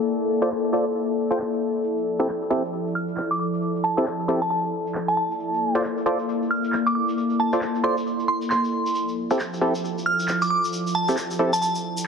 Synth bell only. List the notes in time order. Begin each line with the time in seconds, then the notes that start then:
2.95 F6
3.31 D6
3.39 D6
3.84 A5
4.42 A5
4.50 A5
5.08 A5
5.17 A5
6.51 F6
6.87 D6
6.95 D6
7.40 A5
7.84 C6
8.28 C6
8.51 C6
10.06 F6
10.42 D6
10.50 D6
10.95 A5
11.53 A5
11.62 A5